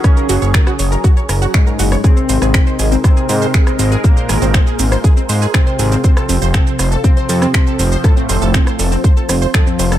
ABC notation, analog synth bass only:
X:1
M:4/4
L:1/16
Q:1/4=120
K:Abmix
V:1 name="Analog synth bass" clef=bass
z2 G,,, G,,, z2 G,,, z3 G,,, z3 G,,, z | z2 A,,, A,,, z2 A,,, z3 A,, z3 A,,, z | z2 A,,, A,,, z2 A,,, z3 A,, z3 A,,, z | z2 F,,, F,,, z2 F,,, z3 F,, z3 F,,, z |
z2 F,,, F,,, z2 F,,, z3 F,,, z3 F,,, z |]